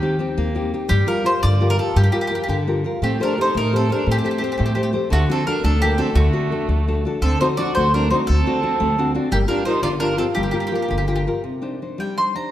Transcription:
Already playing: D#3 G4
0.02 C4 D#4 G4
0.19 C4 D#4 G4
0.38 D#2 A#3
0.55 C4 D#4 G4
0.74 C4 D#4 G4
0.89 G2 G3 G4
1.07 F4 G4 A#4
1.24 F4 G4 A#4 C5
1.42 G2 D3 D5
1.61 F4 G4 A#4
1.70 A#4
1.79 F4 G4 A4 A#4
1.96 G2 G3 G4
2.04 G4
2.12 F4 G4 A#4
2.21 G4
2.27 F4 G4
2.31 G4 A#4
2.44 G4
2.48 G2 D3 G4
2.67 F4 G4 A#4
2.84 F4 G4 A#4
3.02 A2 A3 C4 G4
3.20 D4 G4 A4 A#4 C5
3.37 D#4 G4 A4 C5
3.54 A2 A3 D#4 A#4
3.72 G4 A4 C5
3.77 C4
3.89 G4 A4 A#4 C5
3.95 D4
4.06 A2 A3 C4
4.11 G4
4.18 G4
4.24 G4 A4 C5
4.31 G4
4.38 G4 A4 C5
4.44 G4
4.52 G4
4.58 A2 A3 G4
4.66 G4
4.75 G4 A4 C5
4.83 G4
4.93 G4 A4 C5
5.10 D2 D3 A3 F#4
5.29 C4 D4 F#4 A4
5.46 D4 F#4 A4 A#4
5.64 D2 A3 D4 A4
5.82 A#3 D4 F#4 G4 A4
5.98 C4 D4 F#4 A4
6.14 D2 D3 A3 F#4
6.33 D4 F#4 A4
6.51 D4 F#4 A4
6.68 D2 A3
6.88 D4 F#4 A4
7.05 D4 F#4 A4
7.22 D2 D3 C4 A4
7.41 C4 D4 D#4 F#4 C5
7.57 C4 D4 F#4 D5
7.75 D2 A3 F#4 C5
7.94 C4 D4 F#4 A#4
8.10 C4 D4 D#4 F#4 C5
8.27 D2 D3 C4 A4
8.46 C4 D4 F#4
8.63 C4 D4 F#4
8.80 D2 A3
8.98 C4 D4 F#4 F#5
9.15 C4 D4 F#4 D5
9.31 G1 G3 A#3 G4
9.48 D4 F4 G4 A#4
9.65 D#4 F4 G4 A#4 C5
9.83 G1 D3 F4 D5
10.00 D4 F4 G4 A#4
10.17 C4 F4 G4 A4 A#4
10.35 G1 G3 A#3 G4
10.43 G4
10.51 F4 G4 A#4
10.60 G4
10.67 G4
10.72 F4 G4 A#4
10.82 G4
10.88 G1 D3 G4
10.98 G4
11.07 F4 G4 A#4
11.16 G4
11.27 F4 G4 A#4
11.44 C3
11.62 D4 D#4 C5
11.82 D4 D#4 C5
11.98 G3 G5
12.17 D4 D#4 C5 C6
12.35 D4 D#4 C5 A#5

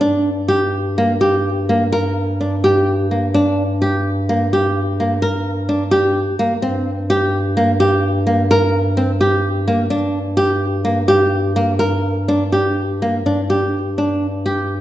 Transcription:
0.01 G2 D4
0.48 G4
0.98 A#3
1.21 G4
1.69 A#3
1.92 A#4
2.41 D4
2.64 G4
3.11 A#3
3.34 D4
3.82 G4
4.29 A#3
4.53 G4
5.00 A#3
5.22 A#4
5.69 D4
5.91 G4
6.39 A#3
6.62 G2 C4
7.10 G4
7.57 A#3
7.80 G4
8.27 A#3
8.51 A#4
8.97 C4
9.21 G4
9.68 A#3
9.90 G2 D4
10.37 G4
10.85 A#3
11.08 G4
11.56 A#3
11.79 A#4
12.28 D4
12.52 G4
13.02 A#3
13.25 G2 D4
13.50 G4
13.98 D4
14.46 G4

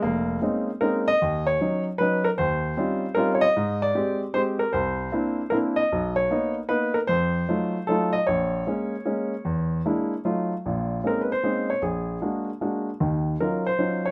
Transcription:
0.02 F1 A#3
0.42 G#3 A#3 C4 C#4 D#4
0.81 G#3 A#3 C4 C#4 D#4 A#4
1.08 D#5
1.22 D#2
1.47 C#5
1.61 F#3 C#4 D#4
1.98 F#3 C#4 D#4 B4
2.24 A#4
2.38 D#2 C5
2.77 G3 C4 C#4 D#4 F4
3.15 G3 C4 C#4 D#4 F4 A#4
3.35 C#5
3.41 D#5
3.57 G#2
3.82 D5
3.95 G#3 C4 G4
4.34 G#3 C4 G4 C5
4.59 A#4
4.73 C2 C5
5.12 A#3 C4 D4 E4
5.50 A#3 C4 D4 E4 A#4
5.76 D#5
5.92 B1
6.16 C#5
6.31 A#3 B3 D#4
6.69 A#3 B3 D#4 B4
6.94 A#4
7.07 F2 C5
7.49 F#3 A3 D#4 F4
7.87 F#3 A3 D#4 F4 A4
8.13 D#5
8.27 A#1 C#5
8.67 G#3 A#3 C#4
9.05 G#3 A#3 C#4
9.45 E2
9.86 G#3 A#3 D4 E4
10.25 F#3 A3 D#4 F4
10.66 A#1 A#2
11.04 G#3 A#3 C4 C#4 D#4 A#4
11.21 B4
11.32 C5
11.43 G#3 A#3 C4 C#4 D#4
11.70 C#5
11.82 A#1 G#4
12.22 G#3 A#3 D4 F#4
12.61 G#3 A#3 D4 F#4
13.00 D#2 D#3
13.40 F#3 C#4 D#4 F4 A#4
13.66 C5
13.79 F#3 C#4 D#4 F4
14.06 C#5

